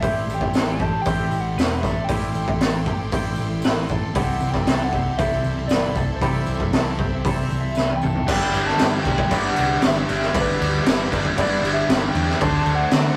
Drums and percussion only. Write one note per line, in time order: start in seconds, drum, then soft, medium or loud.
0.02 kick loud
0.02 open hi-hat medium
0.02 tambourine soft
0.30 tambourine medium
0.41 kick medium
0.54 snare loud
0.54 open hi-hat medium
0.54 tambourine medium
0.79 kick medium
0.79 tambourine soft
1.05 kick loud
1.05 open hi-hat medium
1.05 tambourine medium
1.31 tambourine medium
1.59 snare loud
1.59 open hi-hat soft
1.59 tambourine medium
1.83 kick medium
1.83 snare soft
1.83 tambourine medium
2.09 kick loud
2.09 open hi-hat medium
2.09 tambourine soft
2.35 tambourine medium
2.48 kick medium
2.61 snare loud
2.61 open hi-hat medium
2.61 tambourine medium
2.86 kick medium
2.86 tambourine soft
3.12 kick loud
3.12 open hi-hat medium
3.12 tambourine medium
3.36 tambourine medium
3.62 snare loud
3.62 open hi-hat soft
3.62 tambourine loud
3.89 kick medium
3.89 tambourine medium
4.15 kick loud
4.15 open hi-hat medium
4.15 tambourine soft
4.40 tambourine medium
4.53 kick medium
4.53 snare soft
4.67 snare loud
4.67 open hi-hat medium
4.67 tambourine medium
4.93 kick medium
4.93 tambourine soft
5.19 kick loud
5.19 open hi-hat medium
5.19 tambourine medium
5.44 tambourine medium
5.69 snare loud
5.69 open hi-hat medium
5.69 tambourine medium
5.95 kick medium
5.95 tambourine medium
6.21 kick loud
6.21 open hi-hat medium
6.21 tambourine soft
6.46 tambourine medium
6.60 kick medium
6.73 snare loud
6.73 open hi-hat medium
6.73 tambourine medium
6.99 kick medium
7.25 kick loud
7.25 open hi-hat medium
7.25 tambourine medium
7.51 tambourine medium
7.75 snare medium
7.75 tambourine medium
7.90 high tom medium
8.01 mid tom medium
8.01 tambourine medium
8.15 floor tom medium
8.28 kick loud
8.28 crash loud
8.28 crash medium
8.54 crash medium
8.68 snare soft
8.79 snare loud
8.79 tambourine medium
8.79 crash medium
9.05 kick medium
9.05 crash medium
9.18 kick medium
9.31 kick loud
9.31 crash medium
9.56 crash medium
9.82 snare loud
9.82 tambourine medium
9.82 crash medium
10.09 crash medium
10.21 snare soft
10.35 kick loud
10.35 crash medium
10.61 crash medium
10.86 snare loud
10.86 tambourine medium
10.86 crash medium
11.12 kick medium
11.12 crash medium
11.25 kick medium
11.38 kick loud
11.38 crash medium
11.64 crash medium
11.89 snare loud
11.89 tambourine loud
11.89 crash medium
12.15 crash medium
12.29 snare soft
12.41 kick loud
12.41 crash medium
12.66 crash medium
12.91 snare loud
12.91 tambourine medium
12.91 crash medium